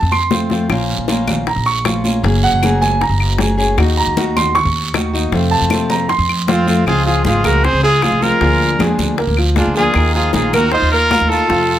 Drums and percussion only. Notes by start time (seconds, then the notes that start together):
0.12 low bongo, high conga, claves
0.31 low bongo, high conga, short guiro
0.50 low bongo, high conga, short guiro
0.70 high bongo, high conga, long guiro, claves
0.91 high conga
1.08 high bongo, high conga, short guiro
1.28 high conga, low conga, short guiro, claves
1.47 high bongo, high conga, long guiro
1.66 high conga
1.85 high bongo, low bongo, high conga, short guiro, claves
2.04 high conga, short guiro
2.24 high bongo, high conga, long guiro
2.63 high bongo, high conga, short guiro, claves
2.82 high bongo, high conga, short guiro
3.02 high bongo, high conga, long guiro
3.20 high bongo, high conga, claves
3.38 high bongo, low bongo, high conga, short guiro
3.58 high bongo, short guiro
3.78 high bongo, high conga, long guiro, claves
3.98 high conga
4.17 high bongo, high conga, short guiro
4.37 high conga, low conga, short guiro, claves
4.55 high bongo, high conga, low conga, long guiro
4.76 high conga
4.94 high bongo, low bongo, high conga, short guiro, claves
5.15 short guiro
5.32 high bongo, high conga, long guiro
5.52 high conga
5.70 high bongo, high conga, short guiro, claves
5.90 high bongo, high conga, short guiro
6.09 high bongo, high conga, long guiro
6.29 high bongo, high conga, claves
6.48 high bongo, low bongo, high conga, short guiro
6.68 high bongo, high conga, short guiro
6.87 high bongo, high conga, long guiro, claves
7.05 high conga
7.25 high bongo, high conga, short guiro
7.44 high conga, short guiro, claves
7.64 high bongo, high conga, long guiro
7.84 high conga
8.02 high bongo, low bongo, high conga, short guiro, claves
8.22 high conga, short guiro
8.41 high bongo, high conga, long guiro
8.60 high conga
8.80 high bongo, high conga, short guiro, claves
8.98 high bongo, high conga, short guiro
9.18 high bongo, long guiro
9.37 high bongo, high conga, claves
9.56 high bongo, low bongo, high conga, short guiro
9.74 high bongo, short guiro
9.94 high bongo, high conga, long guiro, claves
10.15 high conga
10.33 high bongo, high conga, short guiro
10.53 high conga, short guiro, claves
10.72 high bongo, long guiro
10.93 high conga
11.11 high bongo, low bongo, high conga, short guiro, claves
11.32 short guiro
11.50 high bongo, high conga, long guiro
11.69 high conga